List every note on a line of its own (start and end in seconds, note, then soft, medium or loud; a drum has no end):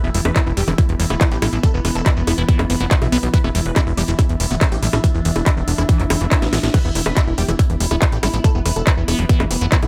0.00 0.10 E1 medium
0.00 6.73 E3 medium
0.00 3.36 B3 medium
0.00 9.88 B3 medium
0.00 0.09 B3 medium
0.00 9.88 E4 medium
0.00 0.08 E4 medium
0.00 9.88 E5 medium
0.00 0.58 E6 medium
0.14 0.20 E1 loud
0.14 0.19 G3 medium
0.14 0.19 E4 medium
0.14 open hi-hat loud
0.25 0.31 E1 medium
0.25 0.29 B4 medium
0.25 closed hi-hat soft
0.25 high bongo medium
0.36 0.41 E4 loud
0.36 0.40 E4 medium
0.36 kick loud
0.36 clap loud
0.36 closed hi-hat medium
0.46 0.52 E1 medium
0.46 0.51 E4 medium
0.55 0.63 E1 loud
0.55 0.62 G3 loud
0.55 0.61 G4 loud
0.55 3.98 B5 medium
0.55 open hi-hat medium
0.68 0.74 E1 medium
0.68 0.71 E3 loud
0.68 0.72 E4 medium
0.68 closed hi-hat medium
0.68 high bongo soft
0.78 0.81 E3 loud
0.78 0.83 E4 medium
0.78 kick loud
0.78 closed hi-hat medium
0.89 0.95 E1 medium
0.89 closed hi-hat soft
1.00 1.06 E1 loud
1.00 1.04 G3 medium
1.00 1.04 E4 medium
1.00 open hi-hat loud
1.10 1.16 D1 loud
1.10 1.15 B3 medium
1.10 1.15 E4 medium
1.10 closed hi-hat medium
1.10 high bongo soft
1.21 1.24 E3 medium
1.21 1.25 E4 medium
1.21 kick loud
1.21 clap loud
1.21 closed hi-hat medium
1.32 1.38 A1 medium
1.32 1.36 G4 loud
1.32 closed hi-hat soft
1.42 1.48 A1 loud
1.42 1.47 G3 loud
1.42 1.46 E4 medium
1.42 open hi-hat medium
1.42 high bongo medium
1.53 1.59 A1 medium
1.53 1.56 F3 medium
1.53 1.57 E4 medium
1.53 closed hi-hat soft
1.63 1.66 E3 loud
1.63 1.68 A4 loud
1.63 kick loud
1.63 closed hi-hat medium
1.74 1.80 E1 medium
1.74 1.78 B3 medium
1.85 1.91 E1 loud
1.85 1.88 D3 medium
1.85 1.89 B3 medium
1.85 open hi-hat loud
1.85 high bongo soft
1.95 2.01 E1 loud
1.95 2.00 A4 medium
1.95 closed hi-hat medium
2.06 2.10 B3 medium
2.06 2.11 E4 medium
2.06 kick loud
2.06 clap loud
2.06 closed hi-hat medium
2.17 2.23 E1 medium
2.17 2.21 B3 medium
2.27 2.33 E1 medium
2.27 2.32 B3 medium
2.27 2.32 E4 loud
2.27 open hi-hat medium
2.27 high bongo soft
2.38 2.44 E1 medium
2.38 2.42 B3 medium
2.38 2.43 E4 medium
2.38 closed hi-hat medium
2.49 2.61 E3 medium
2.49 2.53 B3 medium
2.49 kick loud
2.49 closed hi-hat medium
2.59 2.65 F1 medium
2.59 2.64 B3 medium
2.59 clap soft
2.59 closed hi-hat soft
2.59 high bongo medium
2.70 2.76 F1 loud
2.70 2.73 D3 medium
2.70 2.74 B3 medium
2.70 open hi-hat loud
2.80 2.86 F1 medium
2.80 2.85 E3 medium
2.80 2.85 B3 medium
2.80 closed hi-hat medium
2.91 2.95 B3 medium
2.91 2.96 E4 medium
2.91 kick loud
2.91 clap loud
2.91 closed hi-hat medium
3.02 3.08 B1 medium
3.02 3.06 E4 loud
3.02 closed hi-hat soft
3.02 high bongo soft
3.12 3.18 B1 loud
3.12 3.17 B3 loud
3.12 3.17 B3 medium
3.12 open hi-hat medium
3.23 3.29 B1 medium
3.23 3.27 B3 medium
3.23 closed hi-hat medium
3.34 3.38 E3 loud
3.34 6.76 D4 medium
3.34 3.38 B4 loud
3.34 kick loud
3.34 closed hi-hat medium
3.44 3.50 E1 medium
3.44 3.49 B3 medium
3.44 3.49 E4 medium
3.44 high bongo soft
3.55 3.61 E1 loud
3.55 3.60 G3 medium
3.55 3.59 E4 medium
3.55 open hi-hat loud
3.66 3.72 E1 medium
3.66 3.70 B4 medium
3.66 closed hi-hat medium
3.76 3.81 E4 medium
3.76 3.81 E4 loud
3.76 kick loud
3.76 clap loud
3.76 closed hi-hat medium
3.76 high bongo medium
3.87 3.93 E1 medium
3.87 3.91 E4 medium
3.96 4.03 E1 loud
3.96 4.02 G3 loud
3.96 4.02 G4 loud
3.96 7.38 E6 medium
3.96 open hi-hat medium
4.08 4.14 E1 medium
4.08 4.11 E3 loud
4.08 4.12 E4 medium
4.08 closed hi-hat medium
4.19 4.22 E3 loud
4.19 4.23 E4 medium
4.19 kick loud
4.19 closed hi-hat medium
4.19 high bongo soft
4.29 4.35 E1 medium
4.29 closed hi-hat soft
4.40 4.46 E1 loud
4.40 4.45 G3 medium
4.40 4.44 E4 medium
4.40 open hi-hat loud
4.51 4.57 D1 medium
4.51 4.55 B3 medium
4.51 4.55 E4 medium
4.51 closed hi-hat medium
4.61 4.64 E3 medium
4.61 4.66 E4 medium
4.61 kick loud
4.61 clap loud
4.61 closed hi-hat medium
4.61 high bongo soft
4.72 4.78 A1 medium
4.72 4.76 G4 medium
4.72 closed hi-hat soft
4.83 4.89 A1 loud
4.83 4.87 G3 loud
4.83 4.87 E4 medium
4.83 open hi-hat medium
4.93 4.99 A1 medium
4.93 4.96 F3 medium
4.93 4.98 E4 medium
4.93 closed hi-hat medium
4.93 high bongo medium
5.04 5.07 E3 loud
5.04 5.08 E4 loud
5.04 kick loud
5.04 closed hi-hat medium
5.14 5.20 E1 medium
5.14 5.19 E3 medium
5.25 5.31 E1 loud
5.25 5.28 D3 medium
5.25 5.29 E3 medium
5.25 open hi-hat loud
5.36 5.42 E1 loud
5.36 5.40 E4 medium
5.36 closed hi-hat medium
5.36 high bongo soft
5.46 5.51 E3 medium
5.46 5.51 E4 medium
5.46 kick loud
5.46 clap loud
5.46 closed hi-hat medium
5.57 5.63 E1 medium
5.57 5.61 E3 medium
5.68 5.74 E1 medium
5.68 5.72 B3 medium
5.68 5.72 D4 loud
5.68 open hi-hat medium
5.78 5.84 E1 medium
5.78 5.83 E3 medium
5.78 5.83 E4 medium
5.78 closed hi-hat medium
5.78 high bongo soft
5.89 6.01 E3 medium
5.89 5.93 E3 medium
5.89 kick loud
5.89 closed hi-hat medium
5.89 swell medium
6.00 6.06 F1 medium
6.00 6.04 B3 medium
6.00 clap soft
6.00 closed hi-hat soft
6.10 6.16 F1 loud
6.10 6.13 D3 medium
6.10 6.15 E3 medium
6.10 open hi-hat loud
6.10 high bongo medium
6.21 6.27 F1 loud
6.21 6.26 E3 medium
6.21 6.25 E3 medium
6.21 closed hi-hat medium
6.31 6.36 E3 medium
6.31 6.36 E4 medium
6.31 kick loud
6.31 clap loud
6.31 closed hi-hat medium
6.42 6.48 A1 medium
6.42 6.47 B3 loud
6.42 snare medium
6.42 closed hi-hat soft
6.53 6.59 A1 medium
6.53 6.57 E3 medium
6.53 6.58 B3 loud
6.53 snare medium
6.53 open hi-hat medium
6.53 high bongo soft
6.63 6.69 A1 medium
6.63 6.68 E3 medium
6.63 snare medium
6.63 closed hi-hat medium
6.74 6.79 E3 loud
6.74 9.88 E3 medium
6.74 9.88 B3 medium
6.74 6.78 B4 loud
6.74 kick loud
6.74 closed hi-hat medium
6.74 crash medium
6.74 high bongo soft
6.85 6.91 E1 medium
6.85 6.89 B3 medium
6.85 6.89 E4 medium
6.95 7.01 E1 loud
6.95 7.00 G3 medium
6.95 7.00 E4 medium
6.95 open hi-hat loud
7.06 7.12 E1 medium
7.06 7.10 B4 medium
7.06 high bongo medium
7.17 7.21 E4 loud
7.17 7.21 E4 medium
7.17 kick loud
7.17 clap loud
7.17 closed hi-hat medium
7.27 7.33 E1 medium
7.27 7.32 E4 medium
7.36 7.44 E1 loud
7.36 7.43 G3 loud
7.36 7.42 G4 loud
7.36 9.88 B5 medium
7.36 open hi-hat medium
7.49 7.54 E1 medium
7.49 7.51 E3 loud
7.49 7.53 E4 medium
7.49 closed hi-hat medium
7.49 high bongo soft
7.59 7.62 E3 loud
7.59 7.64 E4 medium
7.59 kick loud
7.59 closed hi-hat medium
7.70 7.76 E1 medium
7.70 closed hi-hat soft
7.80 7.86 E1 loud
7.80 7.85 G3 medium
7.80 7.85 E4 medium
7.80 open hi-hat loud
7.91 7.97 D1 loud
7.91 7.96 B3 medium
7.91 7.95 E4 medium
7.91 closed hi-hat medium
7.91 high bongo soft
8.02 8.05 E3 medium
8.02 8.06 E4 medium
8.02 kick loud
8.02 clap loud
8.02 closed hi-hat medium
8.12 8.18 A1 medium
8.12 8.17 G4 medium
8.12 closed hi-hat soft
8.23 8.29 A1 loud
8.23 8.28 G3 loud
8.23 8.27 E4 medium
8.23 open hi-hat medium
8.23 high bongo medium
8.34 8.40 A1 medium
8.34 8.37 F3 medium
8.34 8.38 E4 medium
8.34 closed hi-hat medium
8.44 8.47 E3 loud
8.44 8.49 A4 loud
8.44 kick loud
8.44 closed hi-hat medium
8.55 8.61 E1 medium
8.55 8.59 B3 medium
8.66 8.72 E1 loud
8.66 8.68 D3 medium
8.66 8.70 B3 medium
8.66 open hi-hat loud
8.66 high bongo soft
8.76 8.82 E1 medium
8.76 8.81 A4 medium
8.76 closed hi-hat medium
8.87 8.91 B3 medium
8.87 8.92 E4 medium
8.87 kick loud
8.87 clap loud
8.87 closed hi-hat medium
8.97 9.03 E1 medium
8.97 9.02 B3 medium
9.08 9.14 E1 loud
9.08 9.20 B3 medium
9.08 9.12 E4 medium
9.08 open hi-hat loud
9.08 high bongo soft
9.19 9.25 E1 medium
9.19 9.26 F3 medium
9.19 9.23 B3 medium
9.19 closed hi-hat medium
9.29 9.42 E3 medium
9.29 9.34 B3 medium
9.29 kick loud
9.29 closed hi-hat medium
9.40 9.46 F1 medium
9.40 9.45 B3 medium
9.40 clap soft
9.40 closed hi-hat soft
9.40 high bongo medium
9.51 9.57 F1 loud
9.51 9.54 D3 medium
9.51 9.55 B3 medium
9.51 open hi-hat loud
9.61 9.67 F1 loud
9.61 9.66 E3 medium
9.61 9.66 B3 medium
9.61 closed hi-hat medium
9.72 9.76 B3 medium
9.72 9.77 E4 medium
9.72 kick loud
9.72 clap loud
9.72 closed hi-hat medium
9.83 9.88 B1 medium
9.83 9.87 E4 loud
9.83 closed hi-hat soft
9.83 high bongo soft